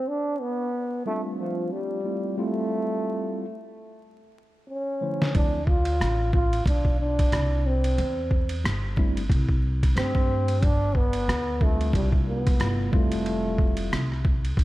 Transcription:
0.08 trombone D4
0.41 trombone B3
1.06 tine electric piano G3 A3 C4 D4 F4, trombone A3
1.40 trombone F3
1.72 trombone G3
2.04 tine electric piano G3 A3 C4 E4 F4
2.37 tine electric piano G3 A3 C4 E4 F4, trombone A3
4.70 trombone C#4
5.01 tine electric piano D3 F3 A3 E4 C5
5.22 snare
5.34 upright bass D2, tine electric piano F3 A3 C4 D4 E4, trombone D4, kick, ride
5.67 trombone F4, kick
5.85 ride
6.01 upright bass A1, cross-stick, hi-hat pedal, ride
6.33 trombone F4, kick
6.53 ride
6.66 upright bass B1, trombone D4, kick, ride
6.85 kick
7.00 trombone D4
7.19 kick, cross-stick, ride
7.32 upright bass C2, cross-stick, hi-hat pedal, ride
7.67 trombone C4
7.84 ride
7.98 upright bass E2, ride
8.31 kick
8.49 ride
8.64 upright bass G1, cross-stick, hi-hat pedal, ride
8.96 tine electric piano G3 A3 C4 D4 E4, kick
9.17 ride
9.30 upright bass C2, kick, ride
9.49 kick
9.83 kick, cross-stick, ride
9.96 upright bass G2, tine electric piano G3 A3 C4 D4 G4, trombone C4, cross-stick, hi-hat pedal, ride
10.15 kick
10.48 ride
10.62 upright bass G1, trombone D4, kick, ride
10.95 trombone B3, kick
11.13 ride
11.28 upright bass D2, cross-stick, hi-hat pedal, ride
11.60 tine electric piano G3 A3 C4 D4 F4, trombone A3, kick
11.81 ride
11.93 upright bass C2, trombone G3, kick, ride
12.12 kick
12.29 trombone B3
12.47 kick, cross-stick, ride
12.59 upright bass G1, tine electric piano C3 G3 A3 E4 F4, cross-stick, hi-hat pedal, ride
12.92 upright bass F1, tine electric piano G3 A3 C4 E4 F4, trombone A3, kick
13.12 ride
13.26 ride
13.58 kick
13.77 ride
13.92 upright bass C2, cross-stick, hi-hat pedal, ride
14.12 cross-stick
14.25 kick
14.45 ride
14.57 upright bass B1, kick, ride

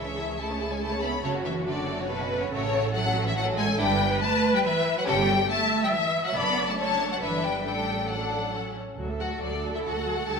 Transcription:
Already playing: double bass section C#2, cello section E3, viola section G#4, violin section E5
0.05 violin section C#4 C#5
0.17 violin section E4 A4
0.28 violin section C#4 C#5
0.38 cello section A3, violin section E4 A4 A5
0.50 violin section C#4 C#5
0.61 violin section E4 A4
0.70 cello section G#3, violin section C#4 C#5 G#5
0.79 cello section A3, violin section E4 A4 A5
0.91 violin section C#4 C#5
1.02 cello section B3, violin section E4 A4 B5
1.13 violin section C#4 C#5
1.22 double bass section F#1, cello section C#3, violin section A3 A4 C#5, viola section F#4
1.34 violin section C#4 F#4
1.43 cello section E3, violin section A3 A4 E5
1.54 violin section C#4 F#4
1.66 cello section D3, violin section A3 A4 D5
1.77 violin section C#4 F#4
1.87 violin section A3 A4
1.98 cello section C#3, violin section C#4 F#4 C#5
2.09 cello section B2, violin section A3 A4 B4, viola section B4
2.20 violin section C#4 F#4
2.30 violin section A3 A4
2.40 cello section C#3, violin section C#4 F#4 C#5
2.51 double bass section A1, cello section C#3, violin section A3 F#4 C#5, viola section A4
2.62 violin section C#4 A4
2.73 violin section A3 F#4
2.83 violin section C#4 A4
2.93 cello section F#3, violin section A3 F#4 F#5
3.03 violin section C#4 A4
3.14 violin section A3 F#4
3.24 cello section E3, violin section C#4 A4 E5
3.35 cello section F#3, violin section A3 F#4 F#5, viola section A4
3.45 violin section C#4 A4
3.55 cello section G#3, violin section A3 F#4 G#5
3.66 violin section C#4 A4
3.76 double bass section G1, cello section G3, violin section D4 E4 G5, viola section B4
4.22 cello section A3, violin section A5
4.54 cello section G3, violin section G5
4.64 cello section E3, violin section E5
4.96 cello section F#3, violin section F#5
5.06 double bass section G1, cello section G3, violin section C#4 A4 G5, viola section G4
5.50 cello section A3, viola section E5, violin section A5
5.83 cello section G3, violin section G5
5.93 cello section E3, violin section E5
6.25 cello section F#3, violin section F#5
6.35 double bass section F#1, cello section B3, violin section D4 A4 B5, viola section D5
6.68 cello section A3, violin section A5
6.77 cello section A3, violin section D4 A4 A5, viola section C#5
7.12 cello section F#3, violin section F#5
7.21 double bass section G1, cello section E3, violin section D4 B4 E5, viola section B4
7.43 cello section G3, violin section G5
7.65 double bass section A1, cello section G3, violin section D4 A4 G5, viola section A4
8.10 cello section F#3, violin section D4 A4 F#5
8.54 violin section C#4 A4
8.98 double bass section D2, viola section F#3 F#4, cello section A4
9.09 viola section A3 A4
9.20 viola section F#3 F#4, violin section F#4 F#5
9.31 viola section A3 A4
9.41 double bass section D2, viola section F#3 F#4, violin section D4 D5
9.52 viola section A3 A4
9.63 viola section F#3 F#4
9.74 viola section A3 A4, violin section E4 E5
9.84 double bass section D2, viola section F#3 F#4, violin section F#4 F#5
9.96 viola section A3 A4
10.06 viola section F#3 F#4
10.16 viola section A3 A4
10.27 double bass section D2, viola section G3 D4, violin section A4 A5

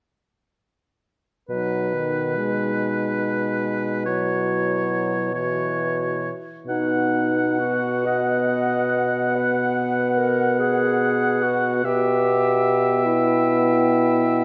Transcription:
1.49 bassoon B2, french horn F#3, clarinet D#4, oboe B4
1.94 french horn D#3
2.37 french horn G#3
4.06 french horn F#3, clarinet E4, oboe C#5
5.33 french horn E3, clarinet F#4, oboe C#5
6.67 bassoon B2, french horn B3, clarinet D#4, flute F#5, oboe F#5
7.59 clarinet F#4
8.06 clarinet D#5
9.35 clarinet B4
10.17 clarinet A#4
10.59 clarinet G#4
11.43 clarinet F#4
11.84 bassoon B2, french horn B3, clarinet G4, oboe E5, flute G5
13.05 clarinet E4

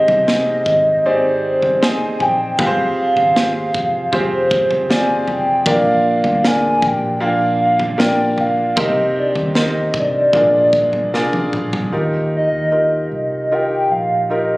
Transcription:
Already playing: grand piano G#2 C4 D#4 G4 G#4 C5, soft synth lead D#5
0.07 fingered electric bass C2, floor tom
0.27 grand piano C4 D#4 G4 G#4 C5, snare
0.66 fingered electric bass G#1, kick
1.03 fingered electric bass G#1, grand piano C4 D#4 G4 G#4 D5, soft synth lead C5
1.62 floor tom
1.82 grand piano C4 D#4 G#4 C5, soft synth lead G#5, snare
2.19 fingered electric bass A#1, soft synth lead G5, floor tom
2.59 fingered electric bass F1, grand piano C4 F4 G4 G#4 B4, soft synth lead F5, kick, floor tom
2.66 grand piano C5
3.16 fingered electric bass G#1, floor tom
3.35 grand piano C4 F4 G4 G#4 C5, snare
3.74 fingered electric bass F1, kick
4.12 fingered electric bass F1, grand piano C4 F4 G4 G#4 C5, soft synth lead C5, kick, floor tom
4.51 kick
4.71 floor tom
4.89 fingered electric bass G1, grand piano C4 F4 G#4 D5, soft synth lead G#5, snare
5.28 fingered electric bass F1, floor tom
5.32 soft synth lead G5
5.66 fingered electric bass A#1, grand piano A#2 A#3 D4 F4 A#4 D5, kick, floor tom
5.70 soft synth lead F5
6.24 fingered electric bass D2, floor tom
6.44 grand piano A#3 D4 F4 A#4 D5, soft synth lead G#5, snare
6.82 fingered electric bass A#1, kick
6.87 soft synth lead G5
7.17 grand piano A#3 D4 F4 A#4, soft synth lead G5
7.21 fingered electric bass A#1, grand piano F5
7.26 soft synth lead F5
7.79 floor tom
7.98 fingered electric bass A#1, grand piano A#3 D4 F4 A#4 D5, soft synth lead G5, snare
8.38 soft synth lead F5, floor tom
8.76 fingered electric bass C2, grand piano C3 C4 D#4 G4 A#4 C5, soft synth lead D#5, kick, floor tom
9.19 soft synth lead D5
9.35 fingered electric bass D#2, floor tom
9.55 grand piano C4 D#4 G4 A#4 C5, soft synth lead D#5, snare
9.94 fingered electric bass C2, kick
9.98 soft synth lead D5
10.33 fingered electric bass A#1, grand piano A#2 D4 F4 G#4 A#4 D5, kick, floor tom
10.73 kick
10.93 floor tom
11.13 fingered electric bass C2, grand piano D4 F4 G#4 A#4 D5, snare
11.33 high tom
11.53 fingered electric bass A#1, mid tom
11.73 floor tom
11.92 fingered electric bass D#2, grand piano D#3 D#4 F4 G4 A#4
12.36 soft synth lead D#5
12.52 fingered electric bass D#2
12.72 grand piano D#4 F4 G4 A#4
13.12 fingered electric bass C2, soft synth lead D#5
13.52 grand piano D#4 F4 G4 A#4, soft synth lead G5
13.91 fingered electric bass A#1, soft synth lead F5
14.30 grand piano D#4 F4 G4 A#4, soft synth lead D#5

